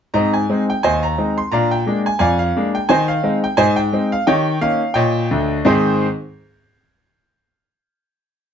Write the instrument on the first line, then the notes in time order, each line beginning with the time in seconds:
grand piano
0.14 G#2 C4 D#5 A#5
0.33 G#5
0.49 G#3 C4 D#4
0.70 G5
0.83 D#2 C5 D#5 G#5
1.03 A#5
1.18 G#3 C4 D#4
1.38 C6
1.52 A#2 D4 D5 F5 A#5
1.71 G5
1.86 G#3 A#3 D4
2.06 G#5
2.19 F2 D5 F5 G#5
2.39 F5
2.56 G#3 A#3 D4
2.75 G5
2.89 D#3 C5 D#5 G#5
3.08 F5
3.23 G#3 C4 D#4
3.44 G5
3.57 G#2 C5 D#5 G#5
3.76 G5
3.93 G#3 C4 D#4
4.12 F5
4.27 D#3 G4 C#5 D#5 G5
4.61 A#3 C#4 D#4 F5
4.94 A#2 C#5 D#5 G5
5.31 D2 D3
5.65 G#2 D#3 C4 D#4 G#4 C5 C6